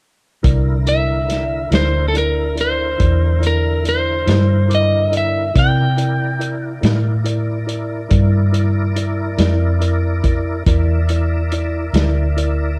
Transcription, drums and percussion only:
0.44 kick loud
0.44 closed hi-hat medium
0.87 closed hi-hat soft
1.30 snare soft
1.30 closed hi-hat medium
1.72 snare medium
1.72 closed hi-hat medium
2.15 closed hi-hat medium
2.58 closed hi-hat medium
3.00 kick medium
3.00 closed hi-hat medium
3.43 closed hi-hat soft
3.85 closed hi-hat soft
4.28 snare medium
4.28 closed hi-hat medium
4.71 closed hi-hat medium
5.13 closed hi-hat medium
5.56 kick loud
5.56 closed hi-hat medium
5.98 closed hi-hat medium
6.41 closed hi-hat soft
6.83 snare medium
6.83 closed hi-hat medium
7.26 closed hi-hat medium
7.69 closed hi-hat medium
8.11 kick medium
8.11 closed hi-hat medium
8.54 closed hi-hat medium
8.96 closed hi-hat medium
9.39 snare medium
9.39 closed hi-hat medium
9.82 closed hi-hat medium
10.24 kick medium
10.24 closed hi-hat medium
10.66 kick loud
10.66 closed hi-hat medium
11.09 closed hi-hat medium
11.52 closed hi-hat medium
11.94 snare medium
11.94 closed hi-hat medium
12.38 closed hi-hat medium

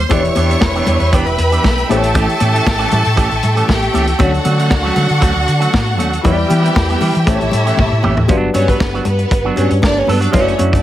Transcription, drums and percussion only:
0.10 kick loud
0.10 closed hi-hat medium
0.10 muted conga medium
0.25 closed hi-hat soft
0.35 closed hi-hat medium
0.35 muted conga medium
0.51 closed hi-hat soft
0.61 kick loud
0.61 snare loud
0.61 high conga medium
0.75 closed hi-hat soft
0.86 closed hi-hat medium
0.86 low conga medium
1.00 closed hi-hat soft
1.13 kick loud
1.13 closed hi-hat medium
1.26 closed hi-hat soft
1.38 closed hi-hat medium
1.38 muted conga soft
1.52 closed hi-hat soft
1.64 kick loud
1.64 snare medium
1.64 high conga medium
1.78 closed hi-hat soft
1.90 closed hi-hat medium
1.90 high conga medium
2.03 closed hi-hat soft
2.15 kick loud
2.15 closed hi-hat medium
2.15 muted conga medium
2.29 closed hi-hat soft
2.40 closed hi-hat medium
2.40 muted conga medium
2.55 closed hi-hat soft
2.67 kick loud
2.67 snare loud
2.67 high conga medium
2.80 snare soft
2.80 closed hi-hat soft
2.91 closed hi-hat medium
2.91 low conga medium
3.05 closed hi-hat soft
3.17 kick loud
3.17 closed hi-hat medium
3.31 closed hi-hat soft
3.43 closed hi-hat medium
3.43 low conga medium
3.57 closed hi-hat soft
3.68 kick loud
3.68 snare loud
3.68 high conga medium
3.82 closed hi-hat soft
3.94 closed hi-hat medium
3.94 high conga medium
4.07 closed hi-hat soft
4.19 kick loud
4.19 closed hi-hat medium
4.19 muted conga medium
4.34 closed hi-hat soft
4.45 closed hi-hat medium
4.45 muted conga medium
4.59 closed hi-hat soft
4.70 kick loud
4.70 snare loud
4.70 high conga medium
4.85 snare soft
4.96 closed hi-hat medium
4.96 low conga medium
5.09 closed hi-hat soft
5.22 kick loud
5.22 closed hi-hat medium
5.48 closed hi-hat medium
5.61 closed hi-hat soft
5.73 kick loud
5.73 snare loud
5.73 high conga medium
5.99 closed hi-hat medium
5.99 high conga medium
6.13 closed hi-hat medium
6.24 kick loud
6.24 closed hi-hat medium
6.24 muted conga medium
6.50 closed hi-hat medium
6.50 muted conga medium
6.65 closed hi-hat soft
6.76 kick loud
6.76 snare loud
6.76 high conga medium
6.90 closed hi-hat soft
7.01 open hi-hat medium
7.01 low conga medium
7.15 closed hi-hat soft
7.27 kick loud
7.27 closed hi-hat medium
7.41 closed hi-hat soft
7.52 closed hi-hat medium
7.52 muted conga soft
7.52 low conga medium
7.67 closed hi-hat soft
7.77 kick medium
7.77 high tom medium
7.77 high conga medium
8.03 mid tom medium
8.03 high conga medium
8.17 floor tom medium
8.28 kick loud
8.28 closed hi-hat medium
8.28 muted conga medium
8.54 closed hi-hat medium
8.54 muted conga medium
8.68 kick medium
8.68 closed hi-hat soft
8.80 kick loud
8.80 snare loud
8.80 high conga medium
8.94 snare soft
9.05 closed hi-hat medium
9.05 low conga medium
9.19 closed hi-hat soft
9.31 kick loud
9.31 closed hi-hat medium
9.56 closed hi-hat medium
9.56 muted conga soft
9.70 closed hi-hat soft
9.82 kick loud
9.82 snare loud
9.82 high conga medium
10.07 open hi-hat medium
10.07 high conga medium
10.22 closed hi-hat medium
10.33 kick loud
10.33 closed hi-hat medium
10.33 muted conga medium
10.48 closed hi-hat soft
10.59 closed hi-hat medium
10.59 muted conga medium
10.73 kick medium
10.73 closed hi-hat soft

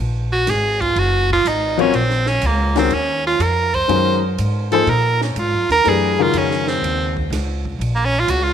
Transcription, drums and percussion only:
0.47 snare soft
0.47 hi-hat pedal medium
0.47 ride medium
0.81 kick medium
0.81 ride medium
0.96 ride medium
1.30 kick medium
1.46 hi-hat pedal medium
1.46 ride medium
1.79 ride soft
1.94 ride medium
2.10 snare soft
2.26 snare soft
2.42 hi-hat pedal medium
2.42 ride medium
2.76 snare medium
2.76 ride medium
2.91 ride medium
3.40 hi-hat pedal medium
3.40 ride medium
3.74 kick medium
3.74 ride soft
3.89 ride medium
4.38 hi-hat pedal medium
4.38 ride medium
4.72 ride medium
4.87 ride medium
5.21 snare soft
5.36 hi-hat pedal medium
5.36 ride medium
5.70 snare soft
5.70 ride medium
5.85 ride medium
6.34 hi-hat pedal medium
6.34 ride medium
6.51 snare soft
6.67 snare soft
6.84 ride medium
7.17 kick medium
7.33 snare soft
7.33 hi-hat pedal soft
7.33 ride medium
7.65 kick medium
7.81 ride medium
8.28 hi-hat pedal medium
8.28 ride medium

